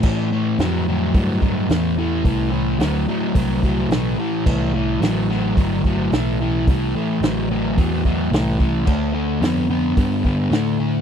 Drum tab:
CC |x-------|--------|x-------|--------|
HH |--o-o-o-|o-o-o-o-|--o-o-o-|o-o-o-o-|
SD |--o---o-|--o---o-|--oo--o-|--o---o-|
BD |o---oo--|o---oo--|o---oo--|o---oo-o|

CC |x-------|
HH |--o-o-o-|
SD |--o---o-|
BD |o---oo--|